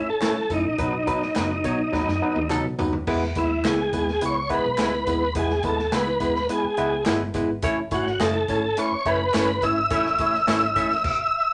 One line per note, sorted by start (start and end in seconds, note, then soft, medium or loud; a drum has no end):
0.00 0.30 A2 medium
0.10 0.52 A4 medium
0.20 0.35 A3 medium
0.20 0.35 C#4 medium
0.20 0.33 E4 medium
0.20 0.36 E4 medium
0.20 0.34 A4 medium
0.20 0.36 C#5 medium
0.20 0.34 C#5 medium
0.20 snare loud
0.20 clap loud
0.20 closed hi-hat medium
0.20 tambourine medium
0.50 0.62 F#2 medium
0.50 0.64 A3 medium
0.50 0.65 C#4 medium
0.50 2.48 D#4 medium
0.50 0.65 E4 medium
0.50 0.65 A4 medium
0.50 kick medium
0.50 closed hi-hat medium
0.50 tambourine soft
0.65 0.77 A#1 medium
0.78 1.27 B1 medium
0.78 0.93 F#3 medium
0.78 0.93 B3 medium
0.78 0.93 D#4 medium
0.78 0.93 B4 medium
0.78 kick loud
0.78 closed hi-hat medium
0.78 tambourine soft
1.07 1.21 F#3 medium
1.07 1.22 B3 medium
1.07 1.22 D#4 medium
1.07 1.22 B4 medium
1.07 kick medium
1.07 closed hi-hat medium
1.07 tambourine soft
1.22 snare soft
1.35 1.60 F#1 medium
1.35 1.50 F#3 medium
1.35 1.50 B3 medium
1.35 1.50 D#4 medium
1.35 1.48 D#4 medium
1.35 1.49 F#4 medium
1.35 1.50 B4 medium
1.35 1.49 B4 medium
1.35 snare loud
1.35 clap medium
1.35 closed hi-hat medium
1.35 tambourine medium
1.64 1.89 B2 loud
1.64 1.79 F#3 medium
1.64 1.79 B3 medium
1.64 1.79 D#4 medium
1.64 1.79 C#5 medium
1.64 kick medium
1.64 closed hi-hat medium
1.64 tambourine medium
1.92 2.05 D#2 medium
1.92 2.07 F#3 medium
1.92 2.07 B3 medium
1.92 2.08 D#4 medium
1.92 2.08 B4 medium
1.92 kick medium
1.92 snare medium
1.92 tambourine soft
2.07 2.19 F#2 medium
2.07 snare medium
2.22 2.36 F#3 medium
2.22 2.36 B3 medium
2.22 2.37 D#4 medium
2.22 2.37 B4 medium
2.35 2.60 D#2 medium
2.35 high tom medium
2.50 2.64 F#3 loud
2.50 2.65 B3 medium
2.50 2.62 D#4 medium
2.50 2.65 D#4 medium
2.50 2.63 F#4 medium
2.50 2.65 A4 loud
2.50 2.63 B4 medium
2.50 clap loud
2.50 mid tom medium
2.50 tambourine loud
2.64 2.77 B1 medium
2.78 3.03 D#2 medium
2.78 2.93 F#3 medium
2.78 2.93 B3 medium
2.78 2.93 D#4 medium
2.78 2.93 B4 medium
2.78 floor tom loud
2.78 tambourine medium
2.93 floor tom medium
3.07 3.32 E2 loud
3.07 3.22 G#3 loud
3.07 3.22 B3 loud
3.07 3.22 E4 medium
3.07 3.22 B4 loud
3.07 kick loud
3.07 crash medium
3.07 tambourine soft
3.23 snare soft
3.35 3.60 D#2 loud
3.35 3.51 G#3 medium
3.35 3.51 B3 medium
3.35 3.51 E4 medium
3.35 3.67 E4 medium
3.35 3.51 B4 medium
3.35 kick medium
3.35 closed hi-hat medium
3.35 tambourine soft
3.64 3.89 C#2 medium
3.64 3.79 G#3 medium
3.64 3.80 B3 medium
3.64 3.77 E4 medium
3.64 3.80 E4 medium
3.64 3.77 G#4 medium
3.64 4.25 G#4 medium
3.64 3.77 B4 medium
3.64 3.80 B4 medium
3.64 snare loud
3.64 clap medium
3.64 closed hi-hat medium
3.64 tambourine medium
3.93 4.17 D#2 medium
3.93 4.08 G#3 medium
3.93 4.08 B3 medium
3.93 4.08 E4 medium
3.93 4.08 B4 medium
3.93 kick medium
3.93 closed hi-hat medium
3.93 tambourine medium
4.08 snare soft
4.21 4.58 C#2 medium
4.21 4.36 G#3 medium
4.21 4.36 B3 medium
4.21 4.36 E4 medium
4.21 4.36 B4 medium
4.21 closed hi-hat medium
4.21 tambourine soft
4.25 4.50 C#5 medium
4.49 4.64 G#3 medium
4.49 4.64 B3 medium
4.49 4.65 E4 medium
4.49 4.65 B4 loud
4.49 kick medium
4.49 closed hi-hat medium
4.49 tambourine soft
4.54 4.81 B4 loud
4.65 4.77 B1 medium
4.78 5.03 D2 medium
4.78 4.93 G#3 medium
4.78 4.93 B3 medium
4.78 4.91 E4 medium
4.78 4.93 E4 medium
4.78 4.91 G#4 medium
4.78 4.93 B4 loud
4.78 4.91 B4 medium
4.78 snare medium
4.78 clap loud
4.78 closed hi-hat medium
4.78 tambourine loud
4.82 5.33 B4 medium
5.07 5.32 D#2 medium
5.07 5.22 G#3 medium
5.07 5.22 B3 medium
5.07 5.22 E4 medium
5.07 5.22 B4 medium
5.07 kick medium
5.07 closed hi-hat medium
5.07 tambourine soft
5.35 5.60 E2 loud
5.35 5.50 G#3 medium
5.35 5.50 B3 medium
5.35 5.50 E4 medium
5.35 5.64 G#4 loud
5.35 5.51 B4 loud
5.35 kick loud
5.35 closed hi-hat loud
5.35 tambourine soft
5.50 snare soft
5.63 5.88 D#2 medium
5.63 5.79 G#3 medium
5.63 5.79 B3 medium
5.63 5.79 E4 medium
5.63 5.79 B4 medium
5.63 kick medium
5.63 closed hi-hat medium
5.63 tambourine soft
5.67 5.95 A4 medium
5.79 snare soft
5.92 6.21 C#2 medium
5.92 6.07 G#3 medium
5.92 6.07 B3 medium
5.92 6.05 E4 medium
5.92 6.07 E4 medium
5.92 6.05 G#4 medium
5.92 6.05 B4 medium
5.92 6.08 B4 medium
5.92 6.47 B4 medium
5.92 snare loud
5.92 clap medium
5.92 closed hi-hat medium
5.92 tambourine medium
6.20 6.45 D#2 loud
6.20 6.35 G#3 medium
6.20 6.35 B3 medium
6.20 6.35 E4 medium
6.20 6.36 B4 medium
6.20 kick medium
6.20 closed hi-hat medium
6.20 tambourine medium
6.35 snare soft
6.49 6.64 G#3 medium
6.49 6.64 B3 medium
6.49 6.64 E4 medium
6.49 7.04 G#4 medium
6.49 6.64 B4 medium
6.49 closed hi-hat loud
6.49 tambourine soft
6.64 muted fingered electric bass stroke soft
6.77 7.03 C#2 medium
6.77 6.92 G#3 medium
6.77 6.92 B3 medium
6.77 6.93 E4 medium
6.77 6.93 B4 loud
6.77 closed hi-hat medium
6.77 tambourine soft
7.06 7.31 G1 medium
7.06 7.21 G#3 medium
7.06 7.21 B3 medium
7.06 7.18 E4 medium
7.06 7.21 E4 medium
7.06 7.19 G#4 medium
7.06 7.19 B4 medium
7.06 7.22 B4 loud
7.06 snare loud
7.06 clap loud
7.06 closed hi-hat medium
7.06 tambourine loud
7.34 7.59 G#1 medium
7.34 7.49 G#3 medium
7.34 7.49 B3 medium
7.34 7.50 E4 medium
7.34 7.50 B4 medium
7.34 kick medium
7.34 closed hi-hat medium
7.34 tambourine medium
7.62 7.87 A1 loud
7.62 7.78 A3 loud
7.62 7.78 C#4 medium
7.62 7.78 E4 loud
7.62 7.78 C#5 loud
7.62 kick loud
7.62 closed hi-hat loud
7.62 tambourine soft
7.91 8.16 G#1 loud
7.91 8.06 A3 medium
7.91 8.06 C#4 medium
7.91 8.06 E4 medium
7.91 8.22 F#4 medium
7.91 8.06 C#5 medium
7.91 kick loud
7.91 closed hi-hat medium
7.91 tambourine soft
8.06 snare soft
8.20 8.45 F#1 medium
8.20 8.34 A3 medium
8.20 8.32 C#4 medium
8.20 8.35 C#4 medium
8.20 8.35 E4 medium
8.20 8.33 E4 medium
8.20 8.33 A4 medium
8.20 8.80 A4 medium
8.20 8.35 D#5 medium
8.20 snare loud
8.20 clap medium
8.20 closed hi-hat medium
8.20 tambourine medium
8.48 8.73 G#1 loud
8.48 8.63 A3 medium
8.48 8.63 C#4 medium
8.48 8.64 E4 medium
8.48 8.64 C#5 medium
8.48 kick medium
8.48 closed hi-hat medium
8.48 tambourine medium
8.77 8.92 A3 medium
8.77 8.92 C#4 medium
8.77 8.92 E4 medium
8.77 8.92 B4 medium
8.77 9.07 C#5 loud
8.77 closed hi-hat loud
8.77 tambourine soft
8.92 muted fingered electric bass stroke soft
9.05 9.30 F#1 medium
9.05 9.20 A3 loud
9.05 9.20 C#4 medium
9.05 9.20 E4 medium
9.05 9.65 B4 loud
9.05 9.21 C#5 loud
9.05 kick medium
9.05 closed hi-hat medium
9.05 tambourine soft
9.34 9.58 G1 loud
9.34 9.48 A3 medium
9.34 9.46 C#4 medium
9.34 9.48 C#4 medium
9.34 9.46 E4 medium
9.34 9.49 E4 medium
9.34 9.47 A4 medium
9.34 9.49 C#5 loud
9.34 snare loud
9.34 clap loud
9.34 closed hi-hat medium
9.34 tambourine loud
9.62 9.87 G#1 medium
9.62 9.77 A3 medium
9.62 9.77 C#4 medium
9.62 9.77 E4 medium
9.62 9.77 C#5 medium
9.62 11.54 E5 loud
9.62 kick medium
9.62 closed hi-hat medium
9.62 tambourine soft
9.90 10.15 A1 loud
9.90 10.05 A3 medium
9.90 10.32 A3 loud
9.90 10.05 C#4 medium
9.90 10.32 C#4 medium
9.90 10.05 E4 medium
9.90 10.32 E4 loud
9.90 10.05 C#5 loud
9.90 kick loud
9.90 closed hi-hat loud
9.90 tambourine soft
10.06 snare soft
10.18 10.43 A1 medium
10.18 10.34 A3 medium
10.18 10.34 C#4 medium
10.18 10.34 E4 medium
10.18 10.34 C#5 medium
10.18 kick loud
10.18 closed hi-hat medium
10.18 tambourine soft
10.34 snare soft
10.47 10.72 G#1 medium
10.47 10.62 A3 medium
10.47 10.59 C#4 medium
10.47 10.62 C#4 medium
10.47 10.62 E4 medium
10.47 10.60 E4 medium
10.47 10.60 A4 medium
10.47 10.62 C#5 loud
10.47 snare loud
10.47 clap medium
10.47 closed hi-hat medium
10.47 tambourine medium
10.76 11.00 A1 medium
10.76 10.90 A3 loud
10.76 10.90 C#4 medium
10.76 10.90 E4 medium
10.76 10.91 E5 loud
10.76 kick medium
10.76 closed hi-hat medium
10.76 tambourine medium
10.91 snare soft
11.04 kick loud
11.04 crash loud